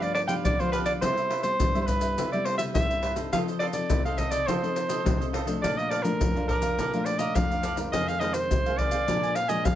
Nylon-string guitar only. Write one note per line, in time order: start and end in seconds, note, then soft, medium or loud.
0.00 0.42 G2 medium
0.00 0.25 F3 medium
0.00 0.26 B3 soft
0.00 0.26 D4 medium
0.28 0.53 F3 medium
0.28 0.53 B3 medium
0.28 0.54 D4 medium
0.44 0.99 D3 medium
0.59 0.98 F3 medium
0.59 0.98 B3 medium
0.59 0.98 D4 medium
1.02 1.57 C3 medium
1.02 1.29 G3 soft
1.02 1.29 B3 medium
1.02 1.29 E4 medium
1.43 1.68 G3 medium
1.43 1.69 B3 medium
1.43 1.69 E4 medium
1.60 2.14 G2 medium
1.75 2.28 G3 medium
1.75 2.28 B3 medium
1.75 2.28 E4 medium
2.19 2.73 C3 medium
2.33 2.71 G3 medium
2.33 2.71 B3 medium
2.33 2.71 E4 medium
2.75 3.30 G2 medium
2.75 3.14 G3 medium
2.75 3.14 B3 medium
2.75 3.14 E4 medium
3.16 3.70 C4 medium
3.16 3.70 D#4 medium
3.16 3.70 A4 medium
3.33 3.87 F3 medium
3.73 3.99 C4 medium
3.73 3.99 D#4 medium
3.73 3.99 A4 medium
3.89 4.44 C3 medium
4.05 4.58 C4 medium
4.05 4.58 D#4 medium
4.05 4.58 A4 medium
4.47 5.02 F3 medium
4.63 5.01 C4 medium
4.63 5.01 D#4 medium
4.63 5.01 A4 medium
5.04 5.59 C3 medium
5.04 5.32 C4 medium
5.04 5.32 D#4 medium
5.04 5.32 A4 medium
5.46 6.00 F3 medium
5.46 6.00 A3 medium
5.46 6.00 D4 medium
5.63 6.17 A#2 medium
6.04 6.29 F3 medium
6.04 6.29 A3 medium
6.04 6.29 D4 medium
6.20 6.75 F2 medium
6.35 6.88 F3 medium
6.35 6.88 D4 medium
6.78 7.33 A#2 medium
6.93 7.31 F3 medium
6.93 7.31 A3 medium
6.93 7.32 D4 medium
7.35 7.90 F2 medium
7.35 7.62 F3 medium
7.35 7.62 A3 medium
7.35 7.63 D4 medium
7.77 8.19 D#3 medium
7.77 8.20 G#3 medium
7.77 8.20 C4 medium
7.93 8.48 F2 medium
8.20 8.48 D#3 medium
8.20 8.48 G#3 medium
8.20 8.48 C4 medium
8.50 9.05 C3 medium
8.66 9.04 D#3 medium
8.66 9.04 G#3 medium
8.66 9.04 C4 medium
9.08 9.63 A#2 medium
9.08 9.35 F3 medium
9.08 9.35 G#3 soft
9.08 9.35 D4 medium
9.49 9.75 F3 medium
9.49 9.75 G#3 medium
9.49 9.75 D4 medium
9.66 9.75 F2 medium